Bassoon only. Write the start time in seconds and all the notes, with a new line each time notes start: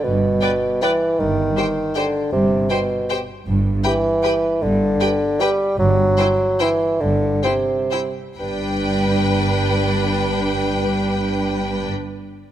0.04 B2
0.83 E3
1.20 D#3
1.96 D3
2.33 C3
2.70 B2
3.85 E3
4.62 D3
5.41 G3
5.79 F#3
6.61 E3
7.01 D3
7.44 C3
8.40 G2